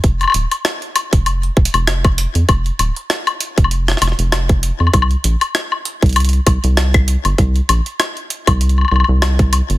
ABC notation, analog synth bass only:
X:1
M:4/4
L:1/16
Q:"Swing 16ths" 1/4=98
K:Cm
V:1 name="Analog synth bass" clef=bass
F,,, z E,,, z4 F,,,3 F,,, F,,,4 F,, | F,,, z E,,, z4 F,,,3 F,,, F,,,4 F,, | C,, z B,,, z4 C,,3 C,, C,,4 G,,, | C,, z B,,, z4 C,,3 C,, C,,4 G,,, |]